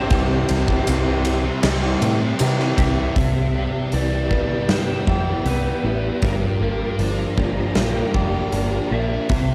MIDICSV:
0, 0, Header, 1, 11, 480
1, 0, Start_track
1, 0, Key_signature, 0, "major"
1, 0, Tempo, 766284
1, 69, Time_signature, 4, 2, 24, 8
1, 5980, End_track
2, 0, Start_track
2, 0, Title_t, "String machine"
2, 0, Program_c, 0, 50
2, 0, Note_on_c, 0, 67, 78
2, 0, Note_on_c, 0, 84, 90
2, 71, Note_on_c, 0, 76, 77
2, 1952, Note_off_c, 0, 84, 0
2, 1955, Note_off_c, 0, 67, 0
2, 1962, Note_off_c, 0, 76, 0
2, 1975, Note_on_c, 0, 79, 86
2, 1976, Note_on_c, 0, 67, 81
2, 1977, Note_on_c, 0, 76, 71
2, 3879, Note_off_c, 0, 67, 0
2, 3879, Note_off_c, 0, 79, 0
2, 3880, Note_off_c, 0, 76, 0
2, 3902, Note_on_c, 0, 67, 73
2, 3903, Note_on_c, 0, 82, 87
2, 3906, Note_on_c, 0, 65, 65
2, 5809, Note_off_c, 0, 67, 0
2, 5809, Note_off_c, 0, 82, 0
2, 5811, Note_off_c, 0, 65, 0
2, 5826, Note_on_c, 0, 76, 70
2, 5828, Note_on_c, 0, 84, 88
2, 5829, Note_on_c, 0, 67, 75
2, 5980, Note_off_c, 0, 67, 0
2, 5980, Note_off_c, 0, 76, 0
2, 5980, Note_off_c, 0, 84, 0
2, 5980, End_track
3, 0, Start_track
3, 0, Title_t, "Lead electric guitar"
3, 0, Program_c, 1, 29
3, 0, Note_on_c, 1, 72, 93
3, 860, Note_off_c, 1, 72, 0
3, 860, Note_on_c, 1, 71, 93
3, 1477, Note_off_c, 1, 71, 0
3, 1754, Note_on_c, 1, 76, 112
3, 2468, Note_off_c, 1, 76, 0
3, 2470, Note_on_c, 1, 74, 81
3, 2944, Note_on_c, 1, 72, 89
3, 2959, Note_off_c, 1, 74, 0
3, 3397, Note_off_c, 1, 72, 0
3, 3430, Note_on_c, 1, 71, 78
3, 3916, Note_off_c, 1, 71, 0
3, 3919, Note_on_c, 1, 70, 78
3, 4366, Note_off_c, 1, 70, 0
3, 5597, Note_on_c, 1, 76, 91
3, 5980, Note_off_c, 1, 76, 0
3, 5980, End_track
4, 0, Start_track
4, 0, Title_t, "Clean electric guitar"
4, 0, Program_c, 2, 27
4, 0, Note_on_c, 2, 60, 77
4, 0, Note_on_c, 2, 62, 81
4, 0, Note_on_c, 2, 67, 79
4, 65, Note_on_c, 2, 55, 79
4, 67, Note_off_c, 2, 62, 0
4, 307, Note_off_c, 2, 60, 0
4, 309, Note_on_c, 2, 60, 74
4, 550, Note_off_c, 2, 55, 0
4, 557, Note_on_c, 2, 55, 67
4, 789, Note_off_c, 2, 60, 0
4, 796, Note_on_c, 2, 60, 67
4, 1023, Note_off_c, 2, 67, 0
4, 1026, Note_on_c, 2, 67, 90
4, 1259, Note_off_c, 2, 60, 0
4, 1266, Note_on_c, 2, 60, 77
4, 1502, Note_on_c, 2, 64, 81
4, 1732, Note_off_c, 2, 67, 0
4, 1740, Note_on_c, 2, 67, 80
4, 1746, Note_off_c, 2, 55, 0
4, 1979, Note_off_c, 2, 67, 0
4, 1980, Note_off_c, 2, 64, 0
4, 1982, Note_off_c, 2, 60, 0
4, 1984, Note_on_c, 2, 55, 73
4, 2227, Note_on_c, 2, 59, 63
4, 2462, Note_on_c, 2, 64, 63
4, 2699, Note_off_c, 2, 55, 0
4, 2701, Note_on_c, 2, 55, 54
4, 3171, Note_off_c, 2, 64, 0
4, 3179, Note_on_c, 2, 64, 65
4, 3410, Note_off_c, 2, 59, 0
4, 3417, Note_on_c, 2, 59, 68
4, 3651, Note_off_c, 2, 64, 0
4, 3659, Note_on_c, 2, 64, 61
4, 3897, Note_off_c, 2, 55, 0
4, 3899, Note_off_c, 2, 59, 0
4, 3899, Note_on_c, 2, 53, 67
4, 3900, Note_off_c, 2, 64, 0
4, 4134, Note_on_c, 2, 58, 63
4, 4380, Note_on_c, 2, 62, 71
4, 4612, Note_off_c, 2, 53, 0
4, 4619, Note_on_c, 2, 53, 58
4, 4855, Note_off_c, 2, 58, 0
4, 4862, Note_on_c, 2, 58, 69
4, 5102, Note_off_c, 2, 62, 0
4, 5109, Note_on_c, 2, 62, 64
4, 5338, Note_off_c, 2, 58, 0
4, 5345, Note_on_c, 2, 58, 68
4, 5575, Note_off_c, 2, 62, 0
4, 5583, Note_on_c, 2, 62, 63
4, 5815, Note_off_c, 2, 53, 0
4, 5817, Note_on_c, 2, 52, 64
4, 5825, Note_off_c, 2, 62, 0
4, 5827, Note_off_c, 2, 58, 0
4, 5980, Note_off_c, 2, 52, 0
4, 5980, End_track
5, 0, Start_track
5, 0, Title_t, "Distorted electric guitar"
5, 0, Program_c, 3, 30
5, 0, Note_on_c, 3, 55, 70
5, 0, Note_on_c, 3, 60, 84
5, 58, Note_on_c, 3, 48, 91
5, 68, Note_off_c, 3, 55, 0
5, 71, Note_on_c, 3, 55, 100
5, 73, Note_off_c, 3, 60, 0
5, 76, Note_on_c, 3, 60, 95
5, 293, Note_off_c, 3, 48, 0
5, 301, Note_on_c, 3, 48, 81
5, 305, Note_off_c, 3, 55, 0
5, 309, Note_off_c, 3, 60, 0
5, 313, Note_on_c, 3, 55, 85
5, 317, Note_on_c, 3, 60, 90
5, 522, Note_off_c, 3, 48, 0
5, 530, Note_on_c, 3, 48, 98
5, 534, Note_off_c, 3, 55, 0
5, 541, Note_on_c, 3, 55, 110
5, 543, Note_off_c, 3, 60, 0
5, 551, Note_on_c, 3, 60, 103
5, 649, Note_off_c, 3, 60, 0
5, 657, Note_on_c, 3, 60, 77
5, 668, Note_off_c, 3, 55, 0
5, 676, Note_on_c, 3, 55, 65
5, 775, Note_off_c, 3, 48, 0
5, 776, Note_off_c, 3, 55, 0
5, 779, Note_off_c, 3, 60, 0
5, 900, Note_on_c, 3, 60, 75
5, 919, Note_on_c, 3, 55, 63
5, 1263, Note_off_c, 3, 55, 0
5, 1263, Note_on_c, 3, 48, 69
5, 1271, Note_on_c, 3, 55, 81
5, 1273, Note_off_c, 3, 60, 0
5, 1281, Note_on_c, 3, 60, 71
5, 1368, Note_off_c, 3, 60, 0
5, 1375, Note_on_c, 3, 60, 72
5, 1386, Note_off_c, 3, 55, 0
5, 1394, Note_on_c, 3, 55, 65
5, 1492, Note_off_c, 3, 48, 0
5, 1500, Note_off_c, 3, 55, 0
5, 1500, Note_on_c, 3, 48, 92
5, 1508, Note_on_c, 3, 55, 97
5, 1513, Note_off_c, 3, 60, 0
5, 1521, Note_on_c, 3, 60, 116
5, 1612, Note_off_c, 3, 60, 0
5, 1619, Note_on_c, 3, 60, 73
5, 1630, Note_off_c, 3, 55, 0
5, 1637, Note_on_c, 3, 55, 52
5, 1732, Note_off_c, 3, 48, 0
5, 1740, Note_off_c, 3, 55, 0
5, 1740, Note_on_c, 3, 48, 81
5, 1747, Note_off_c, 3, 60, 0
5, 1747, Note_on_c, 3, 55, 94
5, 1754, Note_on_c, 3, 60, 91
5, 1855, Note_off_c, 3, 60, 0
5, 1862, Note_on_c, 3, 60, 76
5, 1870, Note_off_c, 3, 55, 0
5, 1878, Note_on_c, 3, 55, 66
5, 1965, Note_off_c, 3, 48, 0
5, 1966, Note_off_c, 3, 60, 0
5, 1974, Note_off_c, 3, 55, 0
5, 1987, Note_on_c, 3, 48, 64
5, 2223, Note_on_c, 3, 67, 64
5, 2462, Note_on_c, 3, 64, 64
5, 2701, Note_on_c, 3, 59, 64
5, 2937, Note_off_c, 3, 67, 0
5, 2939, Note_on_c, 3, 67, 70
5, 3164, Note_off_c, 3, 64, 0
5, 3171, Note_on_c, 3, 64, 59
5, 3183, Note_off_c, 3, 48, 0
5, 3407, Note_off_c, 3, 59, 0
5, 3415, Note_on_c, 3, 59, 69
5, 3655, Note_off_c, 3, 64, 0
5, 3662, Note_on_c, 3, 64, 67
5, 3898, Note_off_c, 3, 59, 0
5, 3902, Note_off_c, 3, 64, 0
5, 3904, Note_on_c, 3, 43, 65
5, 4144, Note_off_c, 3, 67, 0
5, 4146, Note_on_c, 3, 67, 69
5, 4381, Note_on_c, 3, 62, 67
5, 4620, Note_on_c, 3, 58, 63
5, 4861, Note_off_c, 3, 67, 0
5, 4863, Note_on_c, 3, 67, 73
5, 5096, Note_off_c, 3, 62, 0
5, 5103, Note_on_c, 3, 62, 60
5, 5106, Note_off_c, 3, 43, 0
5, 5331, Note_off_c, 3, 58, 0
5, 5339, Note_on_c, 3, 58, 71
5, 5569, Note_off_c, 3, 62, 0
5, 5577, Note_on_c, 3, 62, 68
5, 5822, Note_off_c, 3, 62, 0
5, 5824, Note_off_c, 3, 58, 0
5, 5827, Note_on_c, 3, 48, 69
5, 5980, Note_off_c, 3, 48, 0
5, 5980, Note_off_c, 3, 67, 0
5, 5980, End_track
6, 0, Start_track
6, 0, Title_t, "Clean electric guitar"
6, 0, Program_c, 4, 27
6, 0, Note_on_c, 4, 60, 85
6, 0, Note_on_c, 4, 67, 89
6, 59, Note_on_c, 4, 48, 109
6, 65, Note_on_c, 4, 52, 113
6, 70, Note_off_c, 4, 60, 0
6, 72, Note_on_c, 4, 55, 115
6, 74, Note_on_c, 4, 64, 119
6, 75, Note_off_c, 4, 67, 0
6, 78, Note_on_c, 4, 67, 114
6, 419, Note_off_c, 4, 67, 0
6, 427, Note_on_c, 4, 67, 77
6, 428, Note_off_c, 4, 64, 0
6, 431, Note_off_c, 4, 55, 0
6, 436, Note_on_c, 4, 64, 64
6, 439, Note_on_c, 4, 55, 63
6, 540, Note_off_c, 4, 48, 0
6, 541, Note_off_c, 4, 52, 0
6, 543, Note_off_c, 4, 55, 0
6, 547, Note_on_c, 4, 48, 88
6, 549, Note_on_c, 4, 52, 89
6, 551, Note_on_c, 4, 55, 86
6, 553, Note_off_c, 4, 64, 0
6, 556, Note_off_c, 4, 67, 0
6, 560, Note_on_c, 4, 64, 99
6, 563, Note_on_c, 4, 67, 103
6, 771, Note_off_c, 4, 52, 0
6, 779, Note_on_c, 4, 52, 71
6, 780, Note_off_c, 4, 55, 0
6, 787, Note_on_c, 4, 55, 78
6, 790, Note_off_c, 4, 64, 0
6, 790, Note_off_c, 4, 67, 0
6, 797, Note_on_c, 4, 67, 84
6, 798, Note_on_c, 4, 64, 76
6, 907, Note_off_c, 4, 64, 0
6, 908, Note_off_c, 4, 67, 0
6, 910, Note_off_c, 4, 52, 0
6, 913, Note_off_c, 4, 55, 0
6, 1024, Note_off_c, 4, 48, 0
6, 1145, Note_on_c, 4, 67, 78
6, 1155, Note_on_c, 4, 64, 70
6, 1168, Note_on_c, 4, 55, 68
6, 1259, Note_off_c, 4, 55, 0
6, 1261, Note_on_c, 4, 52, 77
6, 1262, Note_off_c, 4, 64, 0
6, 1266, Note_on_c, 4, 55, 76
6, 1268, Note_off_c, 4, 67, 0
6, 1270, Note_on_c, 4, 64, 74
6, 1275, Note_on_c, 4, 67, 85
6, 1377, Note_off_c, 4, 67, 0
6, 1378, Note_off_c, 4, 64, 0
6, 1381, Note_off_c, 4, 55, 0
6, 1383, Note_off_c, 4, 52, 0
6, 1504, Note_on_c, 4, 48, 97
6, 1511, Note_on_c, 4, 52, 100
6, 1517, Note_on_c, 4, 55, 102
6, 1521, Note_on_c, 4, 64, 107
6, 1523, Note_on_c, 4, 67, 93
6, 1616, Note_off_c, 4, 67, 0
6, 1621, Note_off_c, 4, 64, 0
6, 1624, Note_on_c, 4, 67, 70
6, 1629, Note_on_c, 4, 64, 72
6, 1630, Note_off_c, 4, 55, 0
6, 1637, Note_on_c, 4, 55, 63
6, 1736, Note_off_c, 4, 52, 0
6, 1744, Note_on_c, 4, 52, 75
6, 1746, Note_off_c, 4, 55, 0
6, 1753, Note_off_c, 4, 64, 0
6, 1753, Note_off_c, 4, 67, 0
6, 1753, Note_on_c, 4, 55, 81
6, 1761, Note_on_c, 4, 64, 75
6, 1761, Note_on_c, 4, 67, 84
6, 1861, Note_off_c, 4, 48, 0
6, 1967, Note_off_c, 4, 52, 0
6, 1972, Note_off_c, 4, 55, 0
6, 1975, Note_off_c, 4, 67, 0
6, 1976, Note_off_c, 4, 64, 0
6, 1985, Note_on_c, 4, 48, 75
6, 2223, Note_on_c, 4, 55, 63
6, 2465, Note_on_c, 4, 52, 61
6, 2699, Note_on_c, 4, 59, 63
6, 2945, Note_off_c, 4, 55, 0
6, 2948, Note_on_c, 4, 55, 62
6, 3182, Note_off_c, 4, 48, 0
6, 3195, Note_on_c, 4, 67, 74
6, 3422, Note_off_c, 4, 59, 0
6, 3429, Note_on_c, 4, 59, 67
6, 3663, Note_off_c, 4, 52, 0
6, 3668, Note_off_c, 4, 55, 0
6, 3670, Note_on_c, 4, 55, 66
6, 3905, Note_off_c, 4, 59, 0
6, 3905, Note_on_c, 4, 43, 74
6, 4138, Note_off_c, 4, 55, 0
6, 4141, Note_on_c, 4, 58, 63
6, 4385, Note_on_c, 4, 53, 68
6, 4404, Note_off_c, 4, 67, 0
6, 4628, Note_on_c, 4, 62, 61
6, 4855, Note_off_c, 4, 58, 0
6, 4863, Note_on_c, 4, 58, 66
6, 5102, Note_on_c, 4, 67, 70
6, 5107, Note_off_c, 4, 43, 0
6, 5334, Note_off_c, 4, 62, 0
6, 5342, Note_on_c, 4, 62, 68
6, 5581, Note_off_c, 4, 58, 0
6, 5588, Note_off_c, 4, 53, 0
6, 5589, Note_on_c, 4, 58, 70
6, 5824, Note_on_c, 4, 48, 83
6, 5825, Note_off_c, 4, 62, 0
6, 5828, Note_off_c, 4, 58, 0
6, 5980, Note_off_c, 4, 48, 0
6, 5980, Note_off_c, 4, 67, 0
6, 5980, End_track
7, 0, Start_track
7, 0, Title_t, "Overdriven electric guitar"
7, 0, Program_c, 5, 29
7, 0, Note_on_c, 5, 48, 69
7, 0, Note_on_c, 5, 55, 78
7, 0, Note_on_c, 5, 60, 97
7, 65, Note_off_c, 5, 48, 0
7, 79, Note_off_c, 5, 55, 0
7, 89, Note_off_c, 5, 60, 0
7, 5980, End_track
8, 0, Start_track
8, 0, Title_t, "Picked electric bass"
8, 0, Program_c, 6, 34
8, 64, Note_on_c, 6, 36, 110
8, 258, Note_off_c, 6, 36, 0
8, 314, Note_on_c, 6, 36, 86
8, 503, Note_off_c, 6, 36, 0
8, 554, Note_on_c, 6, 36, 101
8, 935, Note_off_c, 6, 36, 0
8, 1024, Note_on_c, 6, 36, 97
8, 1216, Note_off_c, 6, 36, 0
8, 1264, Note_on_c, 6, 45, 89
8, 1456, Note_off_c, 6, 45, 0
8, 1508, Note_on_c, 6, 48, 91
8, 1698, Note_off_c, 6, 48, 0
8, 1739, Note_on_c, 6, 36, 102
8, 1932, Note_off_c, 6, 36, 0
8, 1977, Note_on_c, 6, 36, 93
8, 2298, Note_off_c, 6, 36, 0
8, 2462, Note_on_c, 6, 36, 85
8, 2781, Note_off_c, 6, 36, 0
8, 2934, Note_on_c, 6, 43, 84
8, 3096, Note_off_c, 6, 43, 0
8, 3177, Note_on_c, 6, 41, 72
8, 3338, Note_off_c, 6, 41, 0
8, 3414, Note_on_c, 6, 36, 84
8, 3576, Note_off_c, 6, 36, 0
8, 3653, Note_on_c, 6, 33, 89
8, 3815, Note_off_c, 6, 33, 0
8, 3897, Note_on_c, 6, 31, 86
8, 4058, Note_off_c, 6, 31, 0
8, 4130, Note_on_c, 6, 31, 76
8, 4295, Note_off_c, 6, 31, 0
8, 4376, Note_on_c, 6, 31, 85
8, 4539, Note_off_c, 6, 31, 0
8, 4618, Note_on_c, 6, 31, 78
8, 4780, Note_off_c, 6, 31, 0
8, 4858, Note_on_c, 6, 34, 75
8, 5020, Note_off_c, 6, 34, 0
8, 5102, Note_on_c, 6, 29, 87
8, 5263, Note_off_c, 6, 29, 0
8, 5341, Note_on_c, 6, 31, 84
8, 5503, Note_off_c, 6, 31, 0
8, 5582, Note_on_c, 6, 34, 88
8, 5744, Note_off_c, 6, 34, 0
8, 5822, Note_on_c, 6, 36, 91
8, 5980, Note_off_c, 6, 36, 0
8, 5980, End_track
9, 0, Start_track
9, 0, Title_t, "Muted clean electric guitar strokes"
9, 915, Note_on_c, 9, 29, 54
9, 977, Note_off_c, 9, 29, 0
9, 1384, Note_on_c, 9, 29, 54
9, 1447, Note_off_c, 9, 29, 0
9, 5980, End_track
10, 0, Start_track
10, 0, Title_t, "Muted distorted electric guitar strokes"
10, 782, Note_on_c, 9, 29, 52
10, 845, Note_off_c, 9, 29, 0
10, 5980, End_track
11, 0, Start_track
11, 0, Title_t, "Drums"
11, 65, Note_on_c, 9, 51, 98
11, 68, Note_on_c, 9, 36, 114
11, 128, Note_off_c, 9, 51, 0
11, 130, Note_off_c, 9, 36, 0
11, 305, Note_on_c, 9, 51, 76
11, 368, Note_off_c, 9, 51, 0
11, 427, Note_on_c, 9, 36, 84
11, 489, Note_off_c, 9, 36, 0
11, 545, Note_on_c, 9, 51, 104
11, 546, Note_on_c, 9, 54, 113
11, 608, Note_off_c, 9, 51, 0
11, 608, Note_off_c, 9, 54, 0
11, 782, Note_on_c, 9, 51, 72
11, 844, Note_off_c, 9, 51, 0
11, 1022, Note_on_c, 9, 51, 122
11, 1023, Note_on_c, 9, 38, 123
11, 1084, Note_off_c, 9, 51, 0
11, 1085, Note_off_c, 9, 38, 0
11, 1265, Note_on_c, 9, 51, 79
11, 1327, Note_off_c, 9, 51, 0
11, 1498, Note_on_c, 9, 51, 113
11, 1500, Note_on_c, 9, 54, 114
11, 1561, Note_off_c, 9, 51, 0
11, 1563, Note_off_c, 9, 54, 0
11, 1625, Note_on_c, 9, 38, 34
11, 1688, Note_off_c, 9, 38, 0
11, 1741, Note_on_c, 9, 36, 89
11, 1742, Note_on_c, 9, 51, 90
11, 1804, Note_off_c, 9, 36, 0
11, 1804, Note_off_c, 9, 51, 0
11, 1980, Note_on_c, 9, 36, 99
11, 1980, Note_on_c, 9, 46, 50
11, 2042, Note_off_c, 9, 46, 0
11, 2043, Note_off_c, 9, 36, 0
11, 2456, Note_on_c, 9, 46, 43
11, 2518, Note_off_c, 9, 46, 0
11, 2698, Note_on_c, 9, 36, 73
11, 2761, Note_off_c, 9, 36, 0
11, 2937, Note_on_c, 9, 46, 51
11, 2938, Note_on_c, 9, 38, 113
11, 2999, Note_off_c, 9, 46, 0
11, 3001, Note_off_c, 9, 38, 0
11, 3178, Note_on_c, 9, 36, 81
11, 3241, Note_off_c, 9, 36, 0
11, 3418, Note_on_c, 9, 46, 46
11, 3481, Note_off_c, 9, 46, 0
11, 3896, Note_on_c, 9, 46, 44
11, 3899, Note_on_c, 9, 36, 103
11, 3958, Note_off_c, 9, 46, 0
11, 3962, Note_off_c, 9, 36, 0
11, 4379, Note_on_c, 9, 46, 46
11, 4441, Note_off_c, 9, 46, 0
11, 4620, Note_on_c, 9, 36, 69
11, 4683, Note_off_c, 9, 36, 0
11, 4857, Note_on_c, 9, 46, 49
11, 4858, Note_on_c, 9, 38, 116
11, 4919, Note_off_c, 9, 46, 0
11, 4920, Note_off_c, 9, 38, 0
11, 5101, Note_on_c, 9, 36, 79
11, 5164, Note_off_c, 9, 36, 0
11, 5340, Note_on_c, 9, 46, 53
11, 5402, Note_off_c, 9, 46, 0
11, 5820, Note_on_c, 9, 46, 46
11, 5823, Note_on_c, 9, 36, 97
11, 5883, Note_off_c, 9, 46, 0
11, 5886, Note_off_c, 9, 36, 0
11, 5980, End_track
0, 0, End_of_file